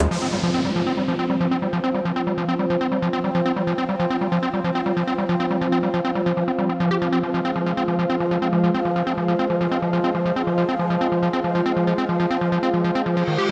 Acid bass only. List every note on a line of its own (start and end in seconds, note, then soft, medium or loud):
0.00 0.07 G3 medium
0.11 0.18 F3 loud
0.22 0.29 C4 loud
0.33 0.39 G3 medium
0.43 0.50 F3 loud
0.54 0.61 C4 loud
0.65 0.72 G3 medium
0.76 0.83 F3 loud
0.87 0.93 C4 loud
0.97 1.04 G3 medium
1.08 1.15 F3 loud
1.19 1.26 C4 loud
1.30 1.37 G3 medium
1.41 1.47 F3 loud
1.51 1.58 C4 loud
1.62 1.69 G3 medium
1.73 1.80 F3 loud
1.84 1.91 C4 loud
1.95 2.01 G3 medium
2.05 2.12 F3 loud
2.16 2.23 C4 loud
2.27 2.34 G3 medium
2.38 2.44 F3 loud
2.48 2.55 C4 loud
2.59 2.66 G3 medium
2.70 2.77 F3 loud
2.81 2.88 C4 loud
2.92 2.98 G3 medium
3.02 3.09 F3 loud
3.13 3.20 C4 loud
3.24 3.31 G3 medium
3.35 3.42 F3 loud
3.46 3.52 C4 loud
3.56 3.63 G3 medium
3.67 3.74 F3 loud
3.78 3.85 C4 loud
3.89 3.96 G3 medium
4.00 4.06 F3 loud
4.10 4.17 C4 loud
4.21 4.28 G3 medium
4.32 4.39 F3 loud
4.43 4.49 C4 loud
4.53 4.60 G3 medium
4.64 4.71 F3 loud
4.75 4.82 C4 loud
4.86 4.93 G3 medium
4.97 5.03 F3 loud
5.07 5.14 C4 loud
5.18 5.25 G3 medium
5.29 5.36 F3 loud
5.40 5.47 C4 loud
5.51 5.57 G3 medium
5.61 5.68 F3 loud
5.72 5.79 C4 loud
5.83 5.90 G3 medium
5.94 6.01 F3 loud
6.05 6.11 C4 loud
6.15 6.22 G3 medium
6.26 6.33 F3 loud
6.37 6.44 F3 medium
6.48 6.52 C4 medium
6.59 6.69 G3 medium
6.69 6.73 C4 medium
6.80 6.90 F3 loud
6.91 6.98 G4 loud
7.02 7.09 F3 loud
7.13 7.19 C4 loud
7.23 7.34 F3 medium
7.34 7.41 F3 medium
7.45 7.52 C4 loud
7.56 7.66 F3 medium
7.66 7.73 F3 loud
7.77 7.84 C4 loud
7.88 7.98 F3 medium
7.99 8.06 F3 loud
8.10 8.16 C4 loud
8.20 8.31 F3 medium
8.31 8.38 F3 loud
8.42 8.49 C4 loud
8.53 8.63 F3 medium
8.64 8.70 F3 loud
8.74 8.81 C4 loud
8.85 8.95 F3 medium
8.96 9.03 F3 loud
9.07 9.14 C4 loud
9.18 9.28 F3 medium
9.28 9.35 F3 loud
9.39 9.46 C4 loud
9.50 9.60 F3 medium
9.61 9.68 F3 loud
9.71 9.78 C4 loud
9.82 9.93 F3 medium
9.93 10.00 F3 loud
10.04 10.11 C4 loud
10.15 10.25 F3 medium
10.25 10.32 F3 loud
10.36 10.43 C4 loud
10.47 10.57 F3 medium
10.58 10.65 F3 loud
10.69 10.75 C4 loud
10.79 10.90 F3 medium
10.90 10.97 F3 loud
11.01 11.08 C4 loud
11.12 11.22 F3 medium
11.23 11.29 F3 loud
11.33 11.40 C4 loud
11.44 11.54 F3 medium
11.55 11.62 F3 loud
11.66 11.73 C4 loud
11.76 11.87 F3 medium
11.87 11.94 F3 loud
11.98 12.05 C4 loud
12.09 12.19 F3 medium
12.20 12.26 F3 loud
12.30 12.37 C4 loud
12.41 12.51 F3 medium
12.52 12.59 F3 loud
12.63 12.70 C4 loud
12.74 12.84 F3 medium
12.84 12.91 F3 loud
12.95 13.02 C4 loud
13.06 13.16 F3 medium
13.17 13.24 F3 loud
13.28 13.38 D#3 medium
13.38 13.49 G4 loud